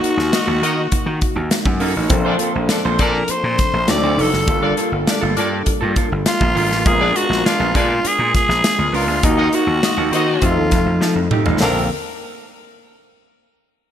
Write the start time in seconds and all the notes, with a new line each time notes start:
Already playing: A#3 D#4 F#4
0.02 A#3 D#4 F#4, closed hi-hat
0.17 D#2, muted clean electric guitar stroke, snare
0.32 D#4 F#4 A#4 D#5, muted clean electric guitar stroke, snare, closed hi-hat
0.47 D#2 A#3 D#4 F#4
0.62 D#3 A#3 D#4 F#4 A#4 D#5, closed hi-hat
0.76 muted clean electric guitar stroke
0.92 muted slap bass stroke, muted clean electric guitar stroke, kick, closed hi-hat
1.06 D#3, muted clean electric guitar stroke
1.21 kick, closed hi-hat
1.36 D#2, muted clean electric guitar stroke
1.51 muted clean electric guitar stroke, snare, closed hi-hat
1.66 F#2, muted clean electric guitar stroke, kick
1.80 F#2 A#3 D#4 A4, open hi-hat
1.96 A1 A#3 D#4 F#4
2.09 A#1 F3 A#3 C4 D4 A4, muted clean electric guitar stroke, kick, closed hi-hat
2.25 D4 F4 A4 C5 D5
2.39 D4 A4 C5, closed hi-hat
2.55 A#1, muted clean electric guitar stroke
2.69 D4 F4 A4 D5, muted clean electric guitar stroke, snare, closed hi-hat
2.85 A#1 D4 A4 C5
2.99 A#2 D4 F4 A4 A#4 C5 D5, kick, closed hi-hat
3.16 muted clean electric guitar stroke
3.28 C5, muted slap bass stroke, muted clean electric guitar stroke, closed hi-hat
3.44 A#2, muted clean electric guitar stroke
3.59 kick, snare, closed hi-hat
3.73 A#1, muted clean electric guitar stroke
3.88 D2 F#3 C4 D4 D#4 A4 D5, muted clean electric guitar stroke, snare, closed hi-hat
4.03 D2 D#4 F#4 C5
4.17 F1 D#4 F#4 A4 D5, open hi-hat
4.32 F#1, muted clean electric guitar stroke, snare
4.47 G1 G3 A#3 D4 F4 A4, muted clean electric guitar stroke, kick, closed hi-hat
4.62 A#3 D4 F4 A4 A#4 D5
4.76 A#3 F4 A4, closed hi-hat
4.92 G1, muted clean electric guitar stroke
5.07 D4 A#4 D5, muted clean electric guitar stroke, snare, closed hi-hat
5.21 G1 A#3 F4 A4
5.37 G2 A#3 D4 F4 A4 A#4 D5, closed hi-hat
5.52 muted clean electric guitar stroke
5.66 muted clean electric guitar stroke, muted slap bass stroke, kick, closed hi-hat
5.81 G2 A#3 F4 A4
5.96 A#3 F4 A4, kick, closed hi-hat
6.11 G1, muted clean electric guitar stroke
6.26 F4, muted clean electric guitar stroke, snare, closed hi-hat
6.40 A#1, muted clean electric guitar stroke, kick
6.55 G#1 A#3 F4 A#4, open hi-hat
6.70 A1 A#3 F4 A4, snare
6.85 A#1 G#3 B3 C#4 F4 G#4 A#4, kick, closed hi-hat
6.93 D4
7.00 B3 D4 G#4 B4 D5
7.15 B3 D4 F#4 G#4, closed hi-hat
7.30 A#1, muted clean electric guitar stroke, snare
7.44 D4 F4 G#4 B4 D5, muted clean electric guitar stroke, snare, closed hi-hat
7.60 A#1 B3 D4 G#4
7.74 A#2 B3 D4 F4 G#4 B4 D5, kick, closed hi-hat
7.90 muted clean electric guitar stroke
8.04 G#4, muted clean electric guitar stroke, muted slap bass stroke, closed hi-hat
8.19 A#2, muted clean electric guitar stroke
8.35 G#4, kick, snare, closed hi-hat
8.49 A#1, muted clean electric guitar stroke, snare
8.64 muted clean electric guitar stroke, snare, closed hi-hat
8.78 D2, muted clean electric guitar stroke
8.93 C#2 B3 D4 F4 A#4, open hi-hat
9.08 D2 B3 D4 G#4
9.23 D#2 A#3 D#4 F#4, muted clean electric guitar stroke, kick, closed hi-hat
9.38 A#3 D#4 F#4 A#4 D#5
9.53 A#3 D#4 F#4, closed hi-hat
9.67 D#2, muted clean electric guitar stroke
9.83 D#4 F#4 A#4 D#5, muted clean electric guitar stroke, snare, closed hi-hat
9.97 D#2 A#3 D#4 F#4
10.11 D#3 A#3 D#4 F#4 A4 C5 D#5, closed hi-hat
10.28 muted clean electric guitar stroke
10.42 F2 F3 A3 C4 D#4 F4 G4, muted clean electric guitar stroke, kick, closed hi-hat
10.51 A4
10.56 D#2, muted clean electric guitar stroke
10.71 F2, kick, snare, closed hi-hat
10.86 F2, muted clean electric guitar stroke
11.00 F3, muted clean electric guitar stroke, snare
11.15 F2, muted clean electric guitar stroke
11.31 A3 D#4 G4, mid tom
11.45 A1 A3 D#4 F4, floor tom
11.60 A#1 D3 A3 A#3 C4 D4 F4 A4 A#4 D5, snare, open hi-hat